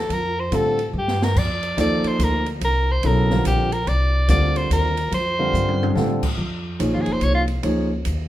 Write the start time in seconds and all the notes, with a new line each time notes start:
0.00 A4
0.09 F2, ride
0.13 A#4
0.40 C5
0.52 A2 D3 G3 C4 F4 A4, hi-hat pedal, ride
0.79 ride
0.93 G2
0.98 G4
1.08 snare
1.22 A#4, snare
1.36 F2 D5, kick, crash
1.63 ride
1.77 D#2 F3 A#3 D#4 A4 D5, hi-hat pedal, ride
2.04 muted upright bass stroke, ride
2.08 C5
2.19 D2, hi-hat pedal, ride
2.23 A#4
2.46 ride
2.61 C2 A#4, ride
2.92 C5
3.03 B1 C#3 F#3 B3 E4 A4 A#4, ride
3.30 D3 G3 C4 F4 A#4, snare
3.45 A#1 G4, hi-hat pedal, ride
3.72 A#4, ride
3.87 C2 D5, ride
4.28 D2 D3 G3 C4 F4 A#4 D5, hi-hat pedal, ride
4.56 C5, ride
4.70 D#2 A#4, hi-hat pedal, ride
4.97 ride
5.11 F2 C5, ride
5.39 D3 G3 C4 F4 A#4
5.53 G2, hi-hat pedal
5.68 high tom
5.83 high tom
5.95 A2 D3 G3 C4 F4 A4, snare
6.23 kick, crash
6.38 F2
6.79 A#1 F3 A#3 D#4 G#4 C#5, hi-hat pedal, ride
6.94 G#1 F4
7.01 G#4
7.06 F1, ride
7.13 C5
7.21 C2 C#5, hi-hat pedal, ride
7.35 F4
7.48 ride
7.63 C#2 F3 A#3 D#4 G#4 C#5, ride
8.05 D#2, hi-hat pedal, ride